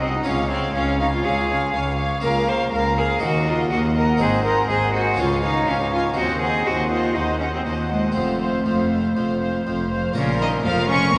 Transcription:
Already playing: harpsichord C2 D#4, cello section C2, double bass section C2
0.01 cello C4, violin section D#5 F#5, viola section D#5
0.15 cello D#4
0.23 cello section C#2, harpsichord C#2 C#4 F4, double bass section C#2, cello C#4, viola section C#5, violin section F5
0.50 cello C4, viola section C#5, violin section F5
0.75 cello section C#2, harpsichord C#2, double bass section C#2, cello C#4, viola section C#5, violin section F5
0.99 cello D#4, viola section C#5, violin section F5
1.13 cello F4
1.24 harpsichord C#2, cello section C#2, double bass section C#2, cello G#4, viola section C#5, violin section F5
1.49 viola section C#5, violin section F5
1.74 harpsichord C#2, double bass section C#2, cello section C#2, viola section C#5, violin section F5
1.98 viola section C#5, violin section F5
2.20 harpsichord C#2 A#3 F4, cello section C#2, double bass section C#2, cello A#4, viola section A#4, violin section F5
2.48 viola section A#4, cello C5, violin section F5
2.72 harpsichord C#2, double bass section C#2, cello section C#2, viola section A#4, cello A#4, violin section F5
2.97 cello G#4, viola section A#4, violin section F5
3.18 harpsichord D#2 A#3 D#4, double bass section D#2, cello section D#2, viola section A#4, violin section D#5 F#5
3.23 cello F#4
3.46 cello F4, viola section A#4, violin section D#5 F#5
3.70 cello section D#2, harpsichord D#2, double bass section D#2, cello F#4, viola section A#4, violin section D#5 F#5
3.95 viola section A#4, cello A#4, violin section D#5 F#5
4.17 double bass section G#1, harpsichord G#2 C4 D#4, cello section G#2, cello G#4, viola section C5, violin section D#5 F#5
4.45 cello A#4, viola section C5, violin section D#5 F#5
4.69 double bass section G#1, cello section G#2, harpsichord G#2, cello G#4, viola section C5, violin section D#5 F#5
4.94 cello F#4, viola section C5, violin section D#5 F#5
5.14 harpsichord G#3 C#4 F4, violin section F5
5.19 cello section C#2, harpsichord C#2, double bass section C#2, cello F4, viola section C#5, violin section G#5
5.43 cello D#4, viola section C#5, violin section F5 G#5
5.67 cello section C#2, harpsichord C#2, double bass section C#2, cello C#4, viola section C#5, violin section F5 G#5
5.81 cello D#4
5.93 cello F4, viola section C#5, violin section F5 G#5
6.14 harpsichord D#2 C4, cello section D#2, cello F#4, violin section D#5 F#5
6.18 double bass section D#2, viola section C5
6.41 cello G#4, viola section C5, violin section D#5 F#5
6.66 double bass section D#2, harpsichord D#2, cello section D#2, cello F#4, viola section C5, violin section D#5 F#5
6.89 cello F4, viola section C5, violin section D#5 F#5
7.14 harpsichord D#2, double bass section D#2, cello section D#2, cello D#4, viola section C5, violin section D#5 F#5
7.40 cello C#4, viola section C5, violin section D#5 F#5
7.54 cello C4
7.65 cello section D#2, double bass section D#2, harpsichord D#2, cello A#3, viola section C5, violin section D#5 F#5
7.90 cello G#3, viola section C5, violin section D#5 F#5
8.12 double bass section F1, cello section F2, cello A3, harpsichord C4, viola section C5
8.16 harpsichord F2, violin section C5 F5
8.40 viola section C5, violin section C5 F5
8.65 double bass section F1, harpsichord F2, cello section F2, viola section C5, violin section C5 F5
8.90 viola section C5, violin section C5 F5
9.15 double bass section F1, harpsichord F2, cello section F2, viola section C5, violin section C5 F5
9.40 viola section C5, violin section C5 F5
9.66 double bass section F1, harpsichord F2, cello section F2, viola section C5, violin section C5 F5
9.90 viola section C5, violin section C5 F5
10.13 double bass section A#1, harpsichord A#2 C#4 A#4, cello section A#2, cello C#3, viola section F4, violin section A#4 C#5
10.40 cello D#3, violin section D#5
10.64 double bass section F1, harpsichord F2, cello section F2, cello F3, viola section F4, violin section A#4 F5
10.89 cello C#4, violin section C#6
11.14 cello A#3

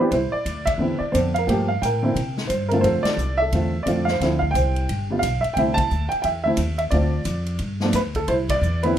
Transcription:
0.00 grand piano E3 B3 C4 D4 G4 B4
0.11 upright bass C2, grand piano E4 C5, kick, ride
0.32 grand piano D5, muted upright bass stroke
0.46 upright bass D2, kick, hi-hat pedal, ride
0.66 grand piano E5, kick, ride
0.78 upright bass E2, grand piano D3 B3 C4 E4
0.99 grand piano D5, muted upright bass stroke
1.12 upright bass F2, grand piano D3 B3 C4 D4 C5, kick, hi-hat pedal, ride
1.34 grand piano F5, ride
1.38 grand piano A#4
1.47 upright bass G2, grand piano F3 A3 A#3 G4, kick, ride
1.68 grand piano F5
1.82 upright bass A2, grand piano A#4 G5, kick, hi-hat pedal, ride
2.03 grand piano D3 A#3 C4 E4
2.15 upright bass C3, kick, ride
2.37 snare
2.47 upright bass G2, grand piano C5, kick, hi-hat pedal, ride
2.69 grand piano D3 A3 A#4, ride
2.73 grand piano C4 F4
2.81 upright bass F2, grand piano C5, kick, ride
2.86 grand piano A4
3.03 grand piano D5, muted upright bass stroke, snare, ride
3.17 upright bass C2, hi-hat pedal
3.38 grand piano E5
3.42 grand piano A4
3.52 upright bass E2, grand piano D3 A3 C4 F4, kick, ride
3.83 upright bass F2, grand piano D3 A3 C4 D5, kick, hi-hat pedal, ride
3.88 grand piano F4
4.05 grand piano F5, snare
4.10 grand piano C5
4.20 upright bass D2, grand piano D3 F3 C4 E4, kick, snare, ride
4.39 grand piano F5, kick
4.51 upright bass C2, grand piano G5
4.55 grand piano C5, hi-hat pedal, ride
4.76 ride
4.89 upright bass G1, kick, ride
5.10 grand piano D3 G3 B3 F4
5.19 upright bass B1, grand piano F5, kick, hi-hat pedal, ride
5.41 grand piano E5, ride
5.45 muted upright bass stroke
5.54 upright bass C2, grand piano D3 A3 G5, kick, ride
5.58 grand piano C4 E4 E5
5.74 grand piano A5, kick, ride
5.91 upright bass D2, hi-hat pedal
6.09 grand piano G5, ride
6.13 muted upright bass stroke
6.22 upright bass E2, grand piano E5 G5, kick, ride
6.44 grand piano D3 A3 C4 E4 E5
6.57 upright bass D#2, kick, hi-hat pedal, ride
6.78 grand piano E5, ride
6.91 upright bass D2, grand piano D3 A3 C4 F4 D5, kick, ride
7.25 upright bass F2, kick, hi-hat pedal, ride
7.46 ride
7.59 upright bass G2, kick, ride
7.80 grand piano F3 A3 B3 D4, snare
7.93 upright bass D2, grand piano B4, kick, snare, hi-hat pedal, ride
8.15 grand piano A4, kick, ride
8.28 upright bass C2, grand piano E4 C5, kick, ride
8.49 grand piano D5, kick, ride
8.61 upright bass E2, hi-hat pedal
8.83 grand piano D3 B3 C4 E4 B4, ride

